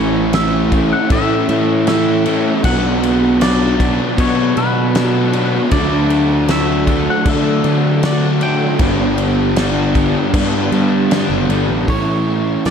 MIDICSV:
0, 0, Header, 1, 7, 480
1, 0, Start_track
1, 0, Key_signature, 3, "major"
1, 0, Tempo, 770218
1, 1650, Time_signature, 4, 2, 24, 8
1, 7917, End_track
2, 0, Start_track
2, 0, Title_t, "Clean electric guitar"
2, 0, Program_c, 0, 27
2, 0, Note_on_c, 0, 73, 102
2, 213, Note_off_c, 0, 73, 0
2, 216, Note_on_c, 0, 76, 100
2, 548, Note_off_c, 0, 76, 0
2, 578, Note_on_c, 0, 78, 92
2, 696, Note_off_c, 0, 78, 0
2, 699, Note_on_c, 0, 76, 100
2, 1164, Note_off_c, 0, 76, 0
2, 1171, Note_on_c, 0, 76, 105
2, 1625, Note_off_c, 0, 76, 0
2, 1651, Note_on_c, 0, 78, 108
2, 2129, Note_off_c, 0, 78, 0
2, 2131, Note_on_c, 0, 74, 99
2, 2617, Note_off_c, 0, 74, 0
2, 2619, Note_on_c, 0, 73, 94
2, 2852, Note_on_c, 0, 71, 81
2, 2861, Note_off_c, 0, 73, 0
2, 3183, Note_off_c, 0, 71, 0
2, 3183, Note_on_c, 0, 69, 81
2, 3305, Note_off_c, 0, 69, 0
2, 3567, Note_on_c, 0, 74, 98
2, 4054, Note_off_c, 0, 74, 0
2, 4057, Note_on_c, 0, 76, 95
2, 4422, Note_off_c, 0, 76, 0
2, 4426, Note_on_c, 0, 78, 92
2, 4544, Note_off_c, 0, 78, 0
2, 4544, Note_on_c, 0, 76, 97
2, 5022, Note_on_c, 0, 74, 93
2, 5028, Note_off_c, 0, 76, 0
2, 5253, Note_on_c, 0, 79, 105
2, 5260, Note_off_c, 0, 74, 0
2, 6903, Note_off_c, 0, 79, 0
2, 7414, Note_on_c, 0, 73, 95
2, 7893, Note_on_c, 0, 76, 94
2, 7905, Note_off_c, 0, 73, 0
2, 7917, Note_off_c, 0, 76, 0
2, 7917, End_track
3, 0, Start_track
3, 0, Title_t, "Overdriven electric guitar"
3, 0, Program_c, 1, 29
3, 1409, Note_on_c, 1, 64, 77
3, 1418, Note_on_c, 1, 61, 64
3, 1425, Note_on_c, 1, 57, 63
3, 1635, Note_off_c, 1, 64, 0
3, 1640, Note_off_c, 1, 61, 0
3, 1643, Note_off_c, 1, 57, 0
3, 3318, Note_on_c, 1, 62, 75
3, 3327, Note_on_c, 1, 59, 66
3, 3338, Note_on_c, 1, 54, 62
3, 3553, Note_off_c, 1, 59, 0
3, 3563, Note_off_c, 1, 54, 0
3, 3574, Note_off_c, 1, 62, 0
3, 5241, Note_on_c, 1, 62, 72
3, 5250, Note_on_c, 1, 57, 76
3, 5259, Note_on_c, 1, 54, 57
3, 5468, Note_off_c, 1, 62, 0
3, 5473, Note_off_c, 1, 57, 0
3, 5477, Note_off_c, 1, 54, 0
3, 7165, Note_on_c, 1, 62, 72
3, 7174, Note_on_c, 1, 59, 61
3, 7184, Note_on_c, 1, 55, 60
3, 7391, Note_off_c, 1, 62, 0
3, 7395, Note_off_c, 1, 59, 0
3, 7400, Note_off_c, 1, 55, 0
3, 7917, End_track
4, 0, Start_track
4, 0, Title_t, "Overdriven electric guitar"
4, 0, Program_c, 2, 29
4, 0, Note_on_c, 2, 45, 103
4, 0, Note_on_c, 2, 52, 103
4, 0, Note_on_c, 2, 57, 100
4, 0, Note_on_c, 2, 61, 98
4, 0, Note_on_c, 2, 64, 101
4, 203, Note_off_c, 2, 52, 0
4, 209, Note_off_c, 2, 57, 0
4, 211, Note_on_c, 2, 52, 89
4, 217, Note_off_c, 2, 61, 0
4, 217, Note_on_c, 2, 57, 88
4, 224, Note_off_c, 2, 64, 0
4, 225, Note_on_c, 2, 61, 84
4, 231, Note_on_c, 2, 64, 84
4, 434, Note_off_c, 2, 64, 0
4, 442, Note_on_c, 2, 64, 80
4, 446, Note_off_c, 2, 45, 0
4, 450, Note_off_c, 2, 61, 0
4, 457, Note_on_c, 2, 61, 73
4, 459, Note_off_c, 2, 57, 0
4, 467, Note_on_c, 2, 57, 64
4, 684, Note_off_c, 2, 52, 0
4, 691, Note_on_c, 2, 52, 80
4, 692, Note_off_c, 2, 57, 0
4, 697, Note_off_c, 2, 61, 0
4, 699, Note_on_c, 2, 57, 78
4, 705, Note_off_c, 2, 64, 0
4, 705, Note_on_c, 2, 61, 91
4, 713, Note_on_c, 2, 64, 84
4, 921, Note_off_c, 2, 64, 0
4, 928, Note_on_c, 2, 64, 74
4, 932, Note_off_c, 2, 61, 0
4, 939, Note_on_c, 2, 61, 69
4, 944, Note_off_c, 2, 57, 0
4, 951, Note_on_c, 2, 57, 59
4, 1165, Note_off_c, 2, 52, 0
4, 1172, Note_on_c, 2, 52, 85
4, 1173, Note_off_c, 2, 57, 0
4, 1177, Note_off_c, 2, 61, 0
4, 1180, Note_on_c, 2, 57, 85
4, 1184, Note_on_c, 2, 61, 84
4, 1187, Note_off_c, 2, 64, 0
4, 1194, Note_on_c, 2, 64, 92
4, 1637, Note_off_c, 2, 52, 0
4, 1641, Note_off_c, 2, 57, 0
4, 1643, Note_off_c, 2, 61, 0
4, 1648, Note_off_c, 2, 64, 0
4, 1648, Note_on_c, 2, 47, 92
4, 1658, Note_on_c, 2, 54, 96
4, 1666, Note_on_c, 2, 59, 103
4, 1672, Note_on_c, 2, 62, 102
4, 2119, Note_off_c, 2, 47, 0
4, 2126, Note_on_c, 2, 47, 85
4, 2133, Note_off_c, 2, 54, 0
4, 2135, Note_off_c, 2, 59, 0
4, 2136, Note_on_c, 2, 54, 83
4, 2142, Note_on_c, 2, 59, 87
4, 2146, Note_off_c, 2, 62, 0
4, 2149, Note_on_c, 2, 62, 99
4, 2361, Note_off_c, 2, 62, 0
4, 2363, Note_on_c, 2, 62, 78
4, 2370, Note_off_c, 2, 59, 0
4, 2378, Note_on_c, 2, 59, 77
4, 2387, Note_off_c, 2, 54, 0
4, 2389, Note_on_c, 2, 54, 65
4, 2599, Note_off_c, 2, 47, 0
4, 2606, Note_on_c, 2, 47, 76
4, 2612, Note_off_c, 2, 54, 0
4, 2613, Note_off_c, 2, 59, 0
4, 2614, Note_on_c, 2, 54, 88
4, 2621, Note_on_c, 2, 59, 84
4, 2625, Note_off_c, 2, 62, 0
4, 2628, Note_on_c, 2, 62, 86
4, 2845, Note_off_c, 2, 62, 0
4, 2848, Note_on_c, 2, 62, 73
4, 2853, Note_off_c, 2, 59, 0
4, 2860, Note_on_c, 2, 59, 70
4, 2869, Note_off_c, 2, 54, 0
4, 2871, Note_on_c, 2, 54, 63
4, 3082, Note_off_c, 2, 47, 0
4, 3089, Note_on_c, 2, 47, 81
4, 3094, Note_off_c, 2, 54, 0
4, 3096, Note_on_c, 2, 54, 82
4, 3098, Note_off_c, 2, 59, 0
4, 3105, Note_on_c, 2, 59, 84
4, 3108, Note_off_c, 2, 62, 0
4, 3110, Note_on_c, 2, 62, 96
4, 3554, Note_off_c, 2, 47, 0
4, 3562, Note_off_c, 2, 59, 0
4, 3564, Note_on_c, 2, 50, 100
4, 3573, Note_off_c, 2, 54, 0
4, 3575, Note_on_c, 2, 54, 102
4, 3579, Note_on_c, 2, 57, 105
4, 3585, Note_off_c, 2, 62, 0
4, 3587, Note_on_c, 2, 62, 107
4, 4041, Note_off_c, 2, 50, 0
4, 4048, Note_on_c, 2, 50, 89
4, 4052, Note_off_c, 2, 54, 0
4, 4055, Note_off_c, 2, 57, 0
4, 4055, Note_on_c, 2, 54, 88
4, 4063, Note_on_c, 2, 57, 86
4, 4065, Note_off_c, 2, 62, 0
4, 4068, Note_on_c, 2, 62, 93
4, 4281, Note_off_c, 2, 62, 0
4, 4283, Note_on_c, 2, 62, 83
4, 4287, Note_off_c, 2, 57, 0
4, 4295, Note_on_c, 2, 57, 66
4, 4304, Note_off_c, 2, 54, 0
4, 4306, Note_on_c, 2, 54, 65
4, 4521, Note_off_c, 2, 50, 0
4, 4529, Note_on_c, 2, 50, 76
4, 4531, Note_off_c, 2, 54, 0
4, 4538, Note_off_c, 2, 57, 0
4, 4539, Note_on_c, 2, 54, 75
4, 4545, Note_off_c, 2, 62, 0
4, 4545, Note_on_c, 2, 57, 86
4, 4553, Note_on_c, 2, 62, 90
4, 4763, Note_off_c, 2, 62, 0
4, 4770, Note_on_c, 2, 62, 75
4, 4772, Note_off_c, 2, 57, 0
4, 4779, Note_on_c, 2, 57, 69
4, 4782, Note_off_c, 2, 54, 0
4, 4789, Note_on_c, 2, 54, 58
4, 5001, Note_off_c, 2, 50, 0
4, 5008, Note_on_c, 2, 50, 82
4, 5010, Note_off_c, 2, 54, 0
4, 5016, Note_off_c, 2, 57, 0
4, 5017, Note_on_c, 2, 54, 82
4, 5020, Note_off_c, 2, 62, 0
4, 5023, Note_on_c, 2, 57, 87
4, 5028, Note_on_c, 2, 62, 91
4, 5472, Note_off_c, 2, 50, 0
4, 5476, Note_off_c, 2, 54, 0
4, 5479, Note_off_c, 2, 57, 0
4, 5482, Note_off_c, 2, 62, 0
4, 5484, Note_on_c, 2, 43, 89
4, 5490, Note_on_c, 2, 50, 112
4, 5495, Note_on_c, 2, 55, 99
4, 5499, Note_on_c, 2, 59, 101
4, 5503, Note_on_c, 2, 62, 107
4, 5958, Note_off_c, 2, 50, 0
4, 5966, Note_on_c, 2, 50, 83
4, 5968, Note_off_c, 2, 55, 0
4, 5973, Note_off_c, 2, 59, 0
4, 5976, Note_on_c, 2, 55, 94
4, 5980, Note_off_c, 2, 62, 0
4, 5981, Note_on_c, 2, 59, 97
4, 5988, Note_on_c, 2, 62, 101
4, 6197, Note_off_c, 2, 62, 0
4, 6204, Note_off_c, 2, 43, 0
4, 6204, Note_on_c, 2, 62, 81
4, 6209, Note_off_c, 2, 59, 0
4, 6216, Note_on_c, 2, 59, 74
4, 6219, Note_off_c, 2, 55, 0
4, 6227, Note_on_c, 2, 55, 64
4, 6438, Note_off_c, 2, 50, 0
4, 6444, Note_off_c, 2, 55, 0
4, 6445, Note_on_c, 2, 50, 82
4, 6451, Note_on_c, 2, 55, 72
4, 6452, Note_off_c, 2, 59, 0
4, 6456, Note_off_c, 2, 62, 0
4, 6459, Note_on_c, 2, 59, 85
4, 6464, Note_on_c, 2, 62, 87
4, 6676, Note_off_c, 2, 62, 0
4, 6684, Note_on_c, 2, 62, 77
4, 6690, Note_off_c, 2, 59, 0
4, 6697, Note_on_c, 2, 59, 65
4, 6701, Note_off_c, 2, 55, 0
4, 6709, Note_on_c, 2, 55, 62
4, 6921, Note_off_c, 2, 50, 0
4, 6928, Note_off_c, 2, 55, 0
4, 6928, Note_on_c, 2, 50, 76
4, 6935, Note_on_c, 2, 55, 82
4, 6936, Note_off_c, 2, 59, 0
4, 6943, Note_off_c, 2, 62, 0
4, 6943, Note_on_c, 2, 59, 84
4, 6951, Note_on_c, 2, 62, 96
4, 7393, Note_off_c, 2, 50, 0
4, 7396, Note_off_c, 2, 55, 0
4, 7400, Note_off_c, 2, 59, 0
4, 7402, Note_on_c, 2, 45, 82
4, 7404, Note_off_c, 2, 62, 0
4, 7413, Note_on_c, 2, 52, 100
4, 7417, Note_on_c, 2, 57, 85
4, 7421, Note_on_c, 2, 61, 94
4, 7425, Note_on_c, 2, 64, 94
4, 7639, Note_off_c, 2, 64, 0
4, 7646, Note_on_c, 2, 64, 69
4, 7652, Note_off_c, 2, 61, 0
4, 7660, Note_on_c, 2, 61, 66
4, 7663, Note_off_c, 2, 57, 0
4, 7671, Note_on_c, 2, 57, 57
4, 7880, Note_off_c, 2, 52, 0
4, 7884, Note_off_c, 2, 45, 0
4, 7887, Note_on_c, 2, 52, 75
4, 7889, Note_off_c, 2, 57, 0
4, 7892, Note_off_c, 2, 61, 0
4, 7896, Note_on_c, 2, 57, 81
4, 7900, Note_off_c, 2, 64, 0
4, 7917, Note_off_c, 2, 52, 0
4, 7917, Note_off_c, 2, 57, 0
4, 7917, End_track
5, 0, Start_track
5, 0, Title_t, "Overdriven electric guitar"
5, 0, Program_c, 3, 29
5, 1415, Note_on_c, 3, 52, 87
5, 1422, Note_on_c, 3, 45, 77
5, 1638, Note_off_c, 3, 52, 0
5, 1639, Note_off_c, 3, 45, 0
5, 3339, Note_on_c, 3, 47, 77
5, 3559, Note_off_c, 3, 47, 0
5, 5257, Note_on_c, 3, 50, 71
5, 5476, Note_off_c, 3, 50, 0
5, 7170, Note_on_c, 3, 50, 82
5, 7175, Note_on_c, 3, 43, 71
5, 7393, Note_off_c, 3, 50, 0
5, 7396, Note_off_c, 3, 43, 0
5, 7917, End_track
6, 0, Start_track
6, 0, Title_t, "Picked electric bass"
6, 0, Program_c, 4, 34
6, 0, Note_on_c, 4, 33, 100
6, 568, Note_off_c, 4, 33, 0
6, 689, Note_on_c, 4, 45, 110
6, 899, Note_off_c, 4, 45, 0
6, 928, Note_on_c, 4, 45, 96
6, 1559, Note_off_c, 4, 45, 0
6, 1646, Note_on_c, 4, 35, 103
6, 2487, Note_off_c, 4, 35, 0
6, 2608, Note_on_c, 4, 47, 113
6, 2818, Note_off_c, 4, 47, 0
6, 2848, Note_on_c, 4, 47, 89
6, 3477, Note_off_c, 4, 47, 0
6, 3564, Note_on_c, 4, 38, 101
6, 4404, Note_off_c, 4, 38, 0
6, 4524, Note_on_c, 4, 50, 115
6, 4734, Note_off_c, 4, 50, 0
6, 4765, Note_on_c, 4, 50, 95
6, 5394, Note_off_c, 4, 50, 0
6, 5482, Note_on_c, 4, 31, 99
6, 6323, Note_off_c, 4, 31, 0
6, 6443, Note_on_c, 4, 43, 111
6, 6654, Note_off_c, 4, 43, 0
6, 6681, Note_on_c, 4, 43, 99
6, 6997, Note_off_c, 4, 43, 0
6, 7040, Note_on_c, 4, 30, 82
6, 7150, Note_off_c, 4, 30, 0
6, 7163, Note_on_c, 4, 31, 88
6, 7272, Note_off_c, 4, 31, 0
6, 7284, Note_on_c, 4, 33, 86
6, 7392, Note_off_c, 4, 33, 0
6, 7402, Note_on_c, 4, 33, 91
6, 7824, Note_off_c, 4, 33, 0
6, 7888, Note_on_c, 4, 40, 85
6, 7917, Note_off_c, 4, 40, 0
6, 7917, End_track
7, 0, Start_track
7, 0, Title_t, "Drums"
7, 206, Note_on_c, 9, 49, 81
7, 211, Note_on_c, 9, 38, 124
7, 268, Note_off_c, 9, 49, 0
7, 273, Note_off_c, 9, 38, 0
7, 448, Note_on_c, 9, 36, 90
7, 448, Note_on_c, 9, 49, 67
7, 510, Note_off_c, 9, 49, 0
7, 511, Note_off_c, 9, 36, 0
7, 686, Note_on_c, 9, 49, 88
7, 688, Note_on_c, 9, 36, 120
7, 748, Note_off_c, 9, 49, 0
7, 750, Note_off_c, 9, 36, 0
7, 926, Note_on_c, 9, 49, 60
7, 989, Note_off_c, 9, 49, 0
7, 1165, Note_on_c, 9, 49, 87
7, 1170, Note_on_c, 9, 38, 112
7, 1227, Note_off_c, 9, 49, 0
7, 1232, Note_off_c, 9, 38, 0
7, 1405, Note_on_c, 9, 49, 65
7, 1468, Note_off_c, 9, 49, 0
7, 1644, Note_on_c, 9, 49, 92
7, 1647, Note_on_c, 9, 36, 116
7, 1707, Note_off_c, 9, 49, 0
7, 1709, Note_off_c, 9, 36, 0
7, 1891, Note_on_c, 9, 49, 69
7, 1953, Note_off_c, 9, 49, 0
7, 2125, Note_on_c, 9, 49, 97
7, 2130, Note_on_c, 9, 38, 122
7, 2188, Note_off_c, 9, 49, 0
7, 2193, Note_off_c, 9, 38, 0
7, 2368, Note_on_c, 9, 36, 92
7, 2369, Note_on_c, 9, 49, 72
7, 2430, Note_off_c, 9, 36, 0
7, 2432, Note_off_c, 9, 49, 0
7, 2607, Note_on_c, 9, 36, 125
7, 2608, Note_on_c, 9, 49, 99
7, 2669, Note_off_c, 9, 36, 0
7, 2671, Note_off_c, 9, 49, 0
7, 2846, Note_on_c, 9, 49, 61
7, 2908, Note_off_c, 9, 49, 0
7, 3085, Note_on_c, 9, 49, 82
7, 3090, Note_on_c, 9, 38, 123
7, 3147, Note_off_c, 9, 49, 0
7, 3152, Note_off_c, 9, 38, 0
7, 3324, Note_on_c, 9, 49, 68
7, 3386, Note_off_c, 9, 49, 0
7, 3560, Note_on_c, 9, 49, 86
7, 3564, Note_on_c, 9, 36, 122
7, 3623, Note_off_c, 9, 49, 0
7, 3626, Note_off_c, 9, 36, 0
7, 3803, Note_on_c, 9, 49, 65
7, 3865, Note_off_c, 9, 49, 0
7, 4040, Note_on_c, 9, 49, 92
7, 4045, Note_on_c, 9, 38, 112
7, 4103, Note_off_c, 9, 49, 0
7, 4108, Note_off_c, 9, 38, 0
7, 4283, Note_on_c, 9, 36, 90
7, 4283, Note_on_c, 9, 49, 66
7, 4345, Note_off_c, 9, 49, 0
7, 4346, Note_off_c, 9, 36, 0
7, 4521, Note_on_c, 9, 49, 91
7, 4523, Note_on_c, 9, 36, 122
7, 4584, Note_off_c, 9, 49, 0
7, 4585, Note_off_c, 9, 36, 0
7, 4761, Note_on_c, 9, 49, 57
7, 4823, Note_off_c, 9, 49, 0
7, 5003, Note_on_c, 9, 49, 82
7, 5008, Note_on_c, 9, 38, 118
7, 5065, Note_off_c, 9, 49, 0
7, 5070, Note_off_c, 9, 38, 0
7, 5240, Note_on_c, 9, 49, 63
7, 5303, Note_off_c, 9, 49, 0
7, 5479, Note_on_c, 9, 49, 90
7, 5481, Note_on_c, 9, 36, 115
7, 5541, Note_off_c, 9, 49, 0
7, 5544, Note_off_c, 9, 36, 0
7, 5719, Note_on_c, 9, 49, 67
7, 5781, Note_off_c, 9, 49, 0
7, 5960, Note_on_c, 9, 49, 91
7, 5965, Note_on_c, 9, 38, 112
7, 6022, Note_off_c, 9, 49, 0
7, 6027, Note_off_c, 9, 38, 0
7, 6201, Note_on_c, 9, 49, 69
7, 6202, Note_on_c, 9, 36, 91
7, 6263, Note_off_c, 9, 49, 0
7, 6264, Note_off_c, 9, 36, 0
7, 6443, Note_on_c, 9, 36, 122
7, 6443, Note_on_c, 9, 49, 100
7, 6505, Note_off_c, 9, 36, 0
7, 6506, Note_off_c, 9, 49, 0
7, 6682, Note_on_c, 9, 49, 61
7, 6744, Note_off_c, 9, 49, 0
7, 6925, Note_on_c, 9, 49, 90
7, 6930, Note_on_c, 9, 38, 113
7, 6987, Note_off_c, 9, 49, 0
7, 6992, Note_off_c, 9, 38, 0
7, 7165, Note_on_c, 9, 49, 69
7, 7227, Note_off_c, 9, 49, 0
7, 7405, Note_on_c, 9, 36, 99
7, 7406, Note_on_c, 9, 46, 49
7, 7467, Note_off_c, 9, 36, 0
7, 7468, Note_off_c, 9, 46, 0
7, 7886, Note_on_c, 9, 46, 50
7, 7891, Note_on_c, 9, 38, 106
7, 7917, Note_off_c, 9, 38, 0
7, 7917, Note_off_c, 9, 46, 0
7, 7917, End_track
0, 0, End_of_file